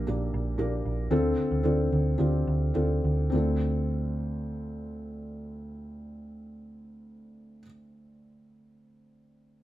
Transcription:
0, 0, Header, 1, 3, 480
1, 0, Start_track
1, 0, Key_signature, -1, "minor"
1, 0, Tempo, 521739
1, 1021, Time_signature, 4, 2, 24, 8
1, 1512, Tempo, 553506
1, 2472, Tempo, 588235
1, 8086, End_track
2, 0, Start_track
2, 0, Title_t, "Felt piano"
2, 0, Program_c, 0, 0
2, 0, Control_c, 0, 64, 127
2, 0, Note_on_c, 0, 46, 64
2, 0, Note_on_c, 0, 58, 62
2, 0, Note_on_c, 0, 62, 64
2, 0, Note_on_c, 0, 67, 57
2, 0, Note_on_c, 0, 70, 71
2, 0, Note_on_c, 0, 76, 59
2, 63, Note_off_c, 0, 58, 0
2, 63, Note_on_c, 0, 58, 58
2, 66, Note_off_c, 0, 62, 0
2, 66, Note_on_c, 0, 62, 54
2, 69, Note_off_c, 0, 67, 0
2, 69, Note_on_c, 0, 67, 52
2, 75, Note_off_c, 0, 70, 0
2, 75, Note_on_c, 0, 70, 59
2, 503, Note_off_c, 0, 58, 0
2, 504, Note_off_c, 0, 62, 0
2, 506, Note_off_c, 0, 67, 0
2, 509, Note_off_c, 0, 70, 0
2, 532, Note_on_c, 0, 58, 60
2, 537, Note_on_c, 0, 62, 57
2, 539, Note_on_c, 0, 67, 60
2, 542, Note_on_c, 0, 70, 75
2, 981, Note_off_c, 0, 58, 0
2, 983, Note_off_c, 0, 62, 0
2, 984, Note_off_c, 0, 67, 0
2, 986, Note_off_c, 0, 70, 0
2, 1017, Note_on_c, 0, 60, 92
2, 1018, Note_on_c, 0, 62, 72
2, 1022, Note_on_c, 0, 50, 54
2, 1024, Note_on_c, 0, 65, 75
2, 1028, Note_on_c, 0, 69, 87
2, 1035, Control_c, 0, 64, 0
2, 1040, Note_off_c, 0, 46, 0
2, 1043, Note_off_c, 0, 76, 0
2, 1213, Control_c, 0, 64, 127
2, 1473, Note_off_c, 0, 60, 0
2, 1473, Note_off_c, 0, 62, 0
2, 1476, Note_off_c, 0, 65, 0
2, 1478, Note_off_c, 0, 69, 0
2, 1502, Note_on_c, 0, 60, 62
2, 1508, Note_on_c, 0, 62, 56
2, 1510, Note_on_c, 0, 65, 57
2, 1513, Note_on_c, 0, 69, 68
2, 1712, Note_off_c, 0, 50, 0
2, 1945, Note_off_c, 0, 60, 0
2, 1948, Note_off_c, 0, 62, 0
2, 1949, Note_off_c, 0, 65, 0
2, 1950, Note_off_c, 0, 69, 0
2, 1976, Note_on_c, 0, 60, 58
2, 1978, Note_on_c, 0, 62, 54
2, 1983, Note_on_c, 0, 65, 56
2, 1987, Note_on_c, 0, 67, 60
2, 2431, Note_off_c, 0, 60, 0
2, 2432, Note_off_c, 0, 62, 0
2, 2434, Note_off_c, 0, 65, 0
2, 2436, Note_off_c, 0, 67, 0
2, 2462, Note_on_c, 0, 60, 51
2, 2465, Note_on_c, 0, 62, 52
2, 2468, Note_on_c, 0, 65, 58
2, 2474, Note_on_c, 0, 69, 64
2, 2905, Note_off_c, 0, 60, 0
2, 2906, Note_off_c, 0, 62, 0
2, 2907, Note_off_c, 0, 65, 0
2, 2910, Note_off_c, 0, 69, 0
2, 2918, Note_on_c, 0, 60, 60
2, 2932, Note_on_c, 0, 62, 57
2, 2939, Note_on_c, 0, 38, 57
2, 2947, Note_on_c, 0, 65, 51
2, 2954, Control_c, 0, 64, 0
2, 2961, Note_on_c, 0, 69, 65
2, 3117, Control_c, 0, 64, 127
2, 6420, Note_off_c, 0, 60, 0
2, 6434, Note_off_c, 0, 62, 0
2, 6441, Note_off_c, 0, 38, 0
2, 6448, Note_off_c, 0, 65, 0
2, 6462, Note_off_c, 0, 69, 0
2, 8086, End_track
3, 0, Start_track
3, 0, Title_t, "Picked electric bass"
3, 0, Program_c, 1, 34
3, 76, Note_on_c, 1, 34, 82
3, 266, Note_off_c, 1, 34, 0
3, 310, Note_on_c, 1, 34, 84
3, 502, Note_off_c, 1, 34, 0
3, 543, Note_on_c, 1, 34, 75
3, 738, Note_off_c, 1, 34, 0
3, 785, Note_on_c, 1, 34, 75
3, 980, Note_off_c, 1, 34, 0
3, 1021, Note_on_c, 1, 38, 69
3, 1221, Note_off_c, 1, 38, 0
3, 1391, Note_on_c, 1, 38, 71
3, 1491, Note_off_c, 1, 38, 0
3, 1517, Note_on_c, 1, 38, 83
3, 1707, Note_off_c, 1, 38, 0
3, 1755, Note_on_c, 1, 38, 77
3, 1947, Note_off_c, 1, 38, 0
3, 1988, Note_on_c, 1, 38, 67
3, 2185, Note_off_c, 1, 38, 0
3, 2231, Note_on_c, 1, 38, 86
3, 2430, Note_off_c, 1, 38, 0
3, 2476, Note_on_c, 1, 38, 67
3, 2667, Note_off_c, 1, 38, 0
3, 2711, Note_on_c, 1, 38, 70
3, 2904, Note_off_c, 1, 38, 0
3, 2946, Note_on_c, 1, 38, 62
3, 6448, Note_off_c, 1, 38, 0
3, 8086, End_track
0, 0, End_of_file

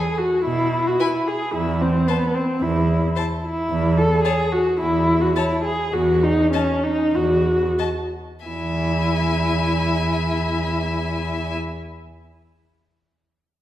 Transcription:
0, 0, Header, 1, 5, 480
1, 0, Start_track
1, 0, Key_signature, 4, "major"
1, 0, Tempo, 542495
1, 1365, Time_signature, 4, 2, 24, 8
1, 3757, Tempo, 557103
1, 4717, Tempo, 583090
1, 5677, Tempo, 632244
1, 6637, Tempo, 671141
1, 10804, End_track
2, 0, Start_track
2, 0, Title_t, "Violin"
2, 0, Program_c, 0, 40
2, 886, Note_on_c, 0, 80, 32
2, 957, Note_off_c, 0, 80, 0
2, 1844, Note_on_c, 0, 81, 30
2, 1915, Note_off_c, 0, 81, 0
2, 2803, Note_on_c, 0, 81, 35
2, 2873, Note_off_c, 0, 81, 0
2, 3762, Note_on_c, 0, 81, 34
2, 3831, Note_off_c, 0, 81, 0
2, 4718, Note_on_c, 0, 81, 35
2, 4784, Note_off_c, 0, 81, 0
2, 5682, Note_on_c, 0, 81, 31
2, 5743, Note_off_c, 0, 81, 0
2, 6636, Note_on_c, 0, 81, 28
2, 6693, Note_off_c, 0, 81, 0
2, 7115, Note_on_c, 0, 80, 30
2, 9318, Note_off_c, 0, 80, 0
2, 10804, End_track
3, 0, Start_track
3, 0, Title_t, "Violin"
3, 0, Program_c, 1, 40
3, 881, Note_on_c, 1, 71, 35
3, 952, Note_off_c, 1, 71, 0
3, 1840, Note_on_c, 1, 72, 36
3, 1911, Note_off_c, 1, 72, 0
3, 2792, Note_on_c, 1, 72, 30
3, 2863, Note_off_c, 1, 72, 0
3, 3758, Note_on_c, 1, 73, 41
3, 3826, Note_off_c, 1, 73, 0
3, 4723, Note_on_c, 1, 73, 36
3, 4789, Note_off_c, 1, 73, 0
3, 5686, Note_on_c, 1, 75, 36
3, 5747, Note_off_c, 1, 75, 0
3, 6635, Note_on_c, 1, 75, 30
3, 6692, Note_off_c, 1, 75, 0
3, 7116, Note_on_c, 1, 76, 30
3, 9318, Note_off_c, 1, 76, 0
3, 10804, End_track
4, 0, Start_track
4, 0, Title_t, "Viola"
4, 0, Program_c, 2, 41
4, 0, Note_on_c, 2, 68, 50
4, 159, Note_on_c, 2, 66, 53
4, 172, Note_off_c, 2, 68, 0
4, 391, Note_off_c, 2, 66, 0
4, 396, Note_on_c, 2, 64, 61
4, 767, Note_on_c, 2, 66, 52
4, 780, Note_off_c, 2, 64, 0
4, 884, Note_on_c, 2, 64, 51
4, 897, Note_off_c, 2, 66, 0
4, 1128, Note_on_c, 2, 68, 50
4, 1141, Note_off_c, 2, 64, 0
4, 1360, Note_off_c, 2, 68, 0
4, 1366, Note_on_c, 2, 64, 55
4, 1603, Note_on_c, 2, 60, 50
4, 1616, Note_off_c, 2, 64, 0
4, 1836, Note_on_c, 2, 59, 52
4, 1849, Note_off_c, 2, 60, 0
4, 2074, Note_on_c, 2, 60, 50
4, 2088, Note_off_c, 2, 59, 0
4, 2315, Note_on_c, 2, 64, 51
4, 2328, Note_off_c, 2, 60, 0
4, 2795, Note_off_c, 2, 64, 0
4, 3037, Note_on_c, 2, 64, 52
4, 3515, Note_on_c, 2, 69, 62
4, 3528, Note_off_c, 2, 64, 0
4, 3748, Note_off_c, 2, 69, 0
4, 3753, Note_on_c, 2, 68, 57
4, 3995, Note_on_c, 2, 66, 61
4, 4008, Note_off_c, 2, 68, 0
4, 4230, Note_off_c, 2, 66, 0
4, 4235, Note_on_c, 2, 64, 61
4, 4592, Note_on_c, 2, 66, 57
4, 4605, Note_off_c, 2, 64, 0
4, 4711, Note_off_c, 2, 66, 0
4, 4717, Note_on_c, 2, 64, 57
4, 4945, Note_off_c, 2, 64, 0
4, 4950, Note_on_c, 2, 68, 50
4, 5186, Note_on_c, 2, 66, 53
4, 5199, Note_off_c, 2, 68, 0
4, 5433, Note_on_c, 2, 63, 58
4, 5446, Note_off_c, 2, 66, 0
4, 5672, Note_off_c, 2, 63, 0
4, 5676, Note_on_c, 2, 61, 56
4, 5913, Note_on_c, 2, 63, 58
4, 5924, Note_off_c, 2, 61, 0
4, 6153, Note_on_c, 2, 66, 52
4, 6164, Note_off_c, 2, 63, 0
4, 6639, Note_off_c, 2, 66, 0
4, 7120, Note_on_c, 2, 64, 44
4, 9323, Note_off_c, 2, 64, 0
4, 10804, End_track
5, 0, Start_track
5, 0, Title_t, "Cello"
5, 0, Program_c, 3, 42
5, 404, Note_on_c, 3, 47, 40
5, 803, Note_off_c, 3, 47, 0
5, 1364, Note_on_c, 3, 40, 47
5, 1760, Note_off_c, 3, 40, 0
5, 2313, Note_on_c, 3, 40, 46
5, 2715, Note_off_c, 3, 40, 0
5, 3274, Note_on_c, 3, 40, 54
5, 3677, Note_off_c, 3, 40, 0
5, 4237, Note_on_c, 3, 40, 42
5, 4638, Note_off_c, 3, 40, 0
5, 5190, Note_on_c, 3, 40, 55
5, 5595, Note_off_c, 3, 40, 0
5, 6148, Note_on_c, 3, 40, 44
5, 6554, Note_off_c, 3, 40, 0
5, 7120, Note_on_c, 3, 40, 36
5, 9323, Note_off_c, 3, 40, 0
5, 10804, End_track
0, 0, End_of_file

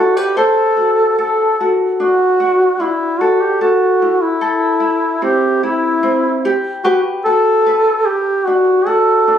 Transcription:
0, 0, Header, 1, 3, 480
1, 0, Start_track
1, 0, Tempo, 809717
1, 214, Time_signature, 4, 2, 24, 8
1, 5563, End_track
2, 0, Start_track
2, 0, Title_t, "Duduk"
2, 0, Program_c, 0, 69
2, 0, Note_on_c, 0, 66, 77
2, 106, Note_on_c, 0, 67, 77
2, 115, Note_off_c, 0, 66, 0
2, 220, Note_off_c, 0, 67, 0
2, 224, Note_on_c, 0, 69, 102
2, 675, Note_off_c, 0, 69, 0
2, 702, Note_on_c, 0, 69, 77
2, 996, Note_off_c, 0, 69, 0
2, 1181, Note_on_c, 0, 66, 85
2, 1668, Note_on_c, 0, 64, 79
2, 1677, Note_off_c, 0, 66, 0
2, 1895, Note_on_c, 0, 66, 73
2, 1903, Note_off_c, 0, 64, 0
2, 2021, Note_on_c, 0, 67, 71
2, 2030, Note_off_c, 0, 66, 0
2, 2137, Note_off_c, 0, 67, 0
2, 2143, Note_on_c, 0, 66, 84
2, 2501, Note_on_c, 0, 64, 86
2, 2509, Note_off_c, 0, 66, 0
2, 3097, Note_off_c, 0, 64, 0
2, 3104, Note_on_c, 0, 67, 76
2, 3322, Note_off_c, 0, 67, 0
2, 3345, Note_on_c, 0, 64, 79
2, 3795, Note_off_c, 0, 64, 0
2, 4054, Note_on_c, 0, 66, 98
2, 4149, Note_off_c, 0, 66, 0
2, 4294, Note_on_c, 0, 69, 99
2, 4775, Note_on_c, 0, 67, 83
2, 4783, Note_off_c, 0, 69, 0
2, 5013, Note_on_c, 0, 66, 80
2, 5022, Note_off_c, 0, 67, 0
2, 5257, Note_on_c, 0, 69, 88
2, 5266, Note_off_c, 0, 66, 0
2, 5563, Note_off_c, 0, 69, 0
2, 5563, End_track
3, 0, Start_track
3, 0, Title_t, "Ukulele"
3, 0, Program_c, 1, 24
3, 0, Note_on_c, 1, 62, 51
3, 0, Note_on_c, 1, 64, 51
3, 0, Note_on_c, 1, 67, 66
3, 0, Note_on_c, 1, 69, 49
3, 99, Note_off_c, 1, 69, 0
3, 99, Note_on_c, 1, 71, 45
3, 216, Note_off_c, 1, 67, 0
3, 217, Note_off_c, 1, 71, 0
3, 218, Note_on_c, 1, 72, 67
3, 222, Note_on_c, 1, 69, 53
3, 268, Note_off_c, 1, 64, 0
3, 455, Note_on_c, 1, 66, 45
3, 699, Note_off_c, 1, 69, 0
3, 702, Note_on_c, 1, 69, 58
3, 935, Note_off_c, 1, 66, 0
3, 951, Note_on_c, 1, 66, 52
3, 1182, Note_off_c, 1, 62, 0
3, 1185, Note_on_c, 1, 62, 48
3, 1415, Note_off_c, 1, 66, 0
3, 1422, Note_on_c, 1, 66, 54
3, 1651, Note_off_c, 1, 62, 0
3, 1658, Note_on_c, 1, 62, 53
3, 1899, Note_off_c, 1, 69, 0
3, 1902, Note_on_c, 1, 69, 48
3, 2138, Note_off_c, 1, 66, 0
3, 2141, Note_off_c, 1, 69, 0
3, 2141, Note_on_c, 1, 69, 58
3, 2184, Note_off_c, 1, 62, 0
3, 2293, Note_off_c, 1, 72, 0
3, 2383, Note_on_c, 1, 64, 50
3, 2608, Note_off_c, 1, 69, 0
3, 2615, Note_on_c, 1, 69, 57
3, 2838, Note_off_c, 1, 64, 0
3, 2845, Note_on_c, 1, 64, 48
3, 3094, Note_on_c, 1, 60, 50
3, 3329, Note_off_c, 1, 64, 0
3, 3339, Note_on_c, 1, 64, 52
3, 3567, Note_off_c, 1, 60, 0
3, 3574, Note_on_c, 1, 60, 50
3, 3821, Note_off_c, 1, 64, 0
3, 3823, Note_on_c, 1, 67, 66
3, 3862, Note_off_c, 1, 60, 0
3, 3862, Note_off_c, 1, 69, 0
3, 4058, Note_off_c, 1, 67, 0
3, 4058, Note_on_c, 1, 67, 65
3, 4061, Note_on_c, 1, 71, 54
3, 4304, Note_on_c, 1, 66, 49
3, 4537, Note_off_c, 1, 71, 0
3, 4543, Note_on_c, 1, 71, 58
3, 4778, Note_off_c, 1, 66, 0
3, 5023, Note_on_c, 1, 62, 49
3, 5255, Note_on_c, 1, 66, 54
3, 5491, Note_off_c, 1, 62, 0
3, 5498, Note_on_c, 1, 62, 50
3, 5563, Note_off_c, 1, 62, 0
3, 5563, Note_off_c, 1, 66, 0
3, 5563, Note_off_c, 1, 67, 0
3, 5563, Note_off_c, 1, 71, 0
3, 5563, End_track
0, 0, End_of_file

